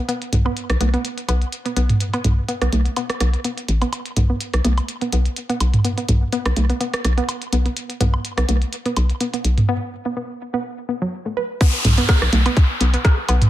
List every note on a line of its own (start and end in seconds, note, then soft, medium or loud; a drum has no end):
0.08 0.12 B3 loud
0.08 closed hi-hat medium
0.22 closed hi-hat soft
0.33 0.48 B1 loud
0.33 closed hi-hat medium
0.33 mid tom medium
0.46 0.50 B3 loud
0.46 high woodblock medium
0.57 closed hi-hat medium
0.70 0.76 B1 medium
0.70 cross-stick medium
0.70 closed hi-hat soft
0.81 0.96 B1 loud
0.81 0.89 B3 medium
0.81 closed hi-hat loud
0.81 high conga medium
0.94 0.96 B3 loud
0.94 closed hi-hat soft
1.05 closed hi-hat medium
1.18 closed hi-hat soft
1.28 1.44 B1 medium
1.28 1.34 B3 loud
1.28 closed hi-hat loud
1.28 high woodblock medium
1.42 closed hi-hat soft
1.52 closed hi-hat medium
1.66 1.73 B3 medium
1.66 closed hi-hat soft
1.77 1.92 B1 medium
1.77 1.80 B3 loud
1.77 closed hi-hat loud
1.90 closed hi-hat soft
1.90 mid tom medium
2.00 closed hi-hat medium
2.14 2.18 B3 loud
2.14 closed hi-hat soft
2.14 high woodblock medium
2.24 2.40 B1 loud
2.24 closed hi-hat medium
2.24 mid tom medium
2.48 2.57 B3 medium
2.48 closed hi-hat medium
2.62 2.68 B1 medium
2.62 2.64 B3 loud
2.62 cross-stick medium
2.62 closed hi-hat soft
2.73 2.88 B1 loud
2.73 closed hi-hat medium
2.73 high conga medium
2.86 closed hi-hat soft
2.96 3.02 B3 loud
2.96 closed hi-hat medium
2.96 high woodblock medium
3.10 cross-stick medium
3.10 closed hi-hat soft
3.20 3.36 B1 medium
3.20 3.26 B3 medium
3.20 cross-stick medium
3.20 closed hi-hat medium
3.34 closed hi-hat soft
3.44 3.50 B3 medium
3.44 closed hi-hat medium
3.58 closed hi-hat soft
3.69 3.84 A1 medium
3.69 closed hi-hat medium
3.82 3.89 B3 medium
3.82 closed hi-hat soft
3.82 high woodblock medium
3.93 closed hi-hat medium
3.93 high woodblock medium
4.06 closed hi-hat soft
4.17 4.32 B1 medium
4.17 4.25 B3 medium
4.17 closed hi-hat medium
4.17 mid tom medium
4.30 4.34 B3 medium
4.41 closed hi-hat medium
4.54 4.60 B1 medium
4.54 cross-stick medium
4.54 closed hi-hat soft
4.65 4.80 B1 loud
4.65 4.70 B3 loud
4.65 closed hi-hat medium
4.65 high conga medium
4.78 closed hi-hat soft
4.78 high woodblock medium
4.89 closed hi-hat medium
5.01 5.09 B3 medium
5.01 closed hi-hat soft
5.13 5.28 B1 medium
5.13 5.18 B3 medium
5.13 closed hi-hat loud
5.25 closed hi-hat soft
5.36 closed hi-hat medium
5.50 5.54 B3 loud
5.50 closed hi-hat soft
5.60 5.76 B1 medium
5.60 closed hi-hat medium
5.60 high woodblock medium
5.74 closed hi-hat soft
5.74 mid tom medium
5.84 5.93 B3 medium
5.84 closed hi-hat medium
5.97 6.02 B3 medium
5.97 closed hi-hat soft
6.09 6.24 B1 loud
6.09 closed hi-hat medium
6.09 mid tom medium
6.33 6.38 B3 loud
6.33 closed hi-hat medium
6.46 6.52 B1 medium
6.46 cross-stick medium
6.46 closed hi-hat soft
6.46 high woodblock medium
6.57 6.72 B1 loud
6.57 closed hi-hat medium
6.57 high conga medium
6.70 6.77 B3 medium
6.70 closed hi-hat soft
6.81 6.86 B3 medium
6.81 closed hi-hat medium
6.94 cross-stick medium
6.94 closed hi-hat soft
7.05 7.20 B1 medium
7.05 cross-stick medium
7.05 closed hi-hat medium
7.18 7.22 B3 loud
7.18 closed hi-hat soft
7.29 closed hi-hat medium
7.29 high woodblock medium
7.42 closed hi-hat soft
7.53 7.68 B1 medium
7.53 7.61 B3 medium
7.53 closed hi-hat medium
7.66 7.70 B3 medium
7.66 closed hi-hat soft
7.77 closed hi-hat medium
7.90 closed hi-hat soft
8.00 8.16 B1 loud
8.00 8.06 B3 medium
8.00 closed hi-hat medium
8.00 mid tom medium
8.14 high woodblock medium
8.25 closed hi-hat medium
8.38 8.44 B1 medium
8.38 8.45 B3 medium
8.38 cross-stick medium
8.38 closed hi-hat soft
8.49 8.64 B1 loud
8.49 8.54 B3 medium
8.49 closed hi-hat medium
8.49 high conga soft
8.62 closed hi-hat soft
8.73 closed hi-hat medium
8.86 8.90 B3 loud
8.86 closed hi-hat soft
8.97 9.12 B1 medium
8.97 closed hi-hat medium
8.97 high woodblock medium
9.10 closed hi-hat soft
9.21 9.29 B3 medium
9.21 closed hi-hat medium
9.34 9.38 B3 medium
9.34 closed hi-hat soft
9.45 9.60 B1 medium
9.45 closed hi-hat medium
9.58 closed hi-hat soft
9.58 mid tom medium
9.69 9.74 B3 loud
10.06 10.13 B3 medium
10.17 10.22 B3 medium
10.54 10.58 B3 loud
10.89 10.94 B3 medium
11.02 11.09 F#3 loud
11.26 11.30 A3 medium
11.37 11.40 B4 loud
11.61 11.66 B3 loud
11.61 kick loud
11.61 closed hi-hat medium
11.61 downlifter medium
11.61 high woodblock medium
11.74 closed hi-hat soft
11.85 12.00 B1 loud
11.85 closed hi-hat medium
11.85 mid tom medium
11.98 12.05 B3 medium
11.98 closed hi-hat soft
12.09 12.14 B3 medium
12.09 kick loud
12.09 cross-stick medium
12.09 closed hi-hat medium
12.22 12.28 B1 medium
12.22 cross-stick medium
12.33 12.48 B1 loud
12.33 closed hi-hat medium
12.33 high conga medium
12.46 12.50 B3 loud
12.46 closed hi-hat soft
12.46 high woodblock medium
12.57 kick loud
12.57 closed hi-hat medium
12.81 12.96 B1 medium
12.81 12.89 B3 medium
12.81 closed hi-hat loud
12.94 12.98 B3 medium
12.94 closed hi-hat soft
13.05 kick loud
13.05 cross-stick medium
13.05 closed hi-hat medium
13.29 13.44 B1 medium
13.29 13.34 B3 loud
13.29 closed hi-hat medium
13.29 high woodblock medium
13.42 closed hi-hat soft
13.42 mid tom loud